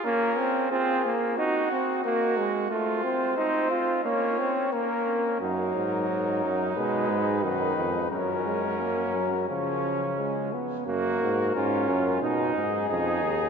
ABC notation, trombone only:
X:1
M:4/4
L:1/8
Q:1/4=89
K:Bbm
V:1 name="Trombone"
B, C C B, E C B, A, | =A, C E F B, C B,2 | [K:F#] F,4 G,2 D,2 | F, G, A, F, E,2 G, B, |
A,2 C2 D2 D2 |]